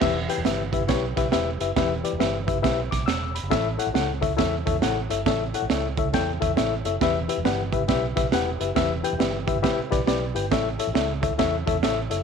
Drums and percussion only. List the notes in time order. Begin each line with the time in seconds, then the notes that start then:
0.01 kick, snare, crash
0.29 closed hi-hat
0.45 snare, closed hi-hat
0.73 kick, closed hi-hat
0.88 kick, snare, closed hi-hat
1.17 kick, snare, closed hi-hat
1.32 snare, closed hi-hat
1.60 closed hi-hat
1.77 kick, snare, closed hi-hat
2.05 closed hi-hat
2.20 snare, closed hi-hat
2.48 kick, closed hi-hat
2.64 kick, snare, closed hi-hat
2.92 kick, snare, closed hi-hat
3.08 snare, closed hi-hat
3.36 closed hi-hat
3.51 kick, snare, closed hi-hat
3.79 closed hi-hat
3.95 snare, closed hi-hat
4.23 kick, closed hi-hat
4.38 kick, snare, closed hi-hat
4.67 kick, closed hi-hat
4.82 snare, closed hi-hat
5.10 closed hi-hat
5.26 kick, snare, closed hi-hat
5.54 closed hi-hat
5.70 snare, closed hi-hat
5.97 kick, closed hi-hat
6.13 kick, snare, closed hi-hat
6.42 kick, closed hi-hat
6.57 snare, closed hi-hat
6.85 closed hi-hat
7.01 kick, snare, closed hi-hat
7.29 closed hi-hat
7.45 snare, closed hi-hat
7.73 kick, closed hi-hat
7.88 kick, snare, closed hi-hat
8.17 kick, snare, closed hi-hat
8.32 snare, closed hi-hat
8.61 closed hi-hat
8.76 kick, snare, closed hi-hat
9.04 closed hi-hat
9.20 snare, closed hi-hat
9.48 kick, closed hi-hat
9.64 kick, snare, closed hi-hat
9.92 kick, snare, closed hi-hat
10.07 snare, closed hi-hat
10.36 closed hi-hat
10.52 kick, snare, closed hi-hat
10.79 closed hi-hat
10.95 snare, closed hi-hat
11.23 kick, closed hi-hat
11.39 kick, snare, closed hi-hat
11.67 kick, closed hi-hat
11.83 snare, closed hi-hat
12.11 closed hi-hat